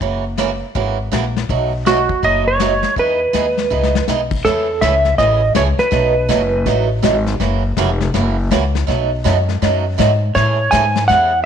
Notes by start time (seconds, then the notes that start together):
0.00 F#1 C#3 E3 A#3 C#4 F#4, brush sweep, kick
0.37 C#3 E3 A#3 C#4 F#4, snare, hi-hat pedal
0.75 G#1 C#3 E3 A#3 C#4 F#4, brush sweep, kick
1.12 A#1 C#3 E3 A#3 C#4 F#4, snare, hi-hat pedal
1.36 snare
1.49 B1 B2 F#3 A3 D#4 F#4, brush sweep, kick
1.86 B2 F#3 A3 D#4 F#4, snare, hi-hat pedal
2.09 kick
2.23 F#1 B2 F#3 A3 D#4 F#4 D#5, brush sweep, kick
2.48 C#5
2.60 B2 F#3 A3 D#4 F#4, snare, hi-hat pedal
2.83 snare
2.96 E2 E3 B3 D#4 G#4 B4, brush sweep, kick
3.33 D#2 E3 B3 D#4 G#4, snare, hi-hat pedal
3.57 snare
3.70 C#2 E3 B3 D#4 G#4
3.83 snare
3.95 snare
4.08 B1 E3 B3 D#4 G#4, snare, hi-hat pedal
4.31 kick, crash
4.45 E2 C#3 E3 A3 C#4 G#4 A4, brush sweep, kick, snare
4.81 C#2 C#3 E3 A3 C#4 G#4 E5, kick, snare, hi-hat pedal
5.05 snare
5.18 A1 C#3 E3 A3 C#4 G#4 D#5, brush sweep, kick, snare
5.55 C#2 C#3 E3 A3 C#4 G#4 C#5, kick, snare, hi-hat pedal
5.79 B4, muted upright bass stroke, snare
5.91 B1 B2 F#3 A3 D#4 F#4, brush sweep, kick, snare
6.29 F#1 B2 F#3 A3 D#4 F#4, kick, snare, hi-hat pedal
6.66 A1 B2 F#3 A3 D#4 F#4, brush sweep, kick, snare
7.02 G#1 B2 F#3 A3 D#4 F#4, kick, snare, hi-hat pedal
7.26 snare
7.40 F#1 C#3 E3 A#3 C#4 F#4, brush sweep, kick, snare
7.77 F1 C#3 E3 A#3 C#4 F#4, kick, snare, hi-hat pedal
8.01 snare
8.14 F#1 C#3 E3 A#3 C#4 F#4, brush sweep, kick, snare
8.51 C#2 C#3 E3 A#3 C#4 F#4, kick, snare, hi-hat pedal
8.75 snare
8.87 B1 B2 F#3 A3 D#4 F#4, brush sweep, kick, snare
9.24 F#2 B2 F#3 A3 D#4 F#4, kick, snare, hi-hat pedal
9.49 snare
9.62 F#2 B2 F#3 A3 D#4 F#4, brush sweep, kick, snare
9.98 G#2 B2 F#3 A3 D#4 F#4, kick, snare, hi-hat pedal
10.35 A2 C#3 E3 A3 C#4 G#4 C#5, brush sweep, kick, snare
10.71 G#2 C#3 E3 A3 C#4 G#4 G#5, kick, snare, hi-hat pedal
10.96 snare
11.08 E2 C#3 E3 A3 C#4 G#4 F#5, brush sweep, kick, snare